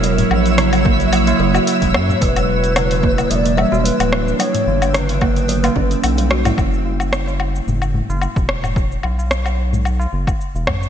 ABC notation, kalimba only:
X:1
M:4/4
L:1/16
Q:"Swing 16ths" 1/4=110
K:none
V:1 name="Kalimba" clef=bass
^F, z3 ^C, z ^A, F, F, A, F, ^F z4 | ^F, z3 ^C, z ^A, F, F, A, G, ^F z4 | ^F, z3 ^C, z ^A, F, F, A, ^C F, z G, ^F E | z16 |
z16 |]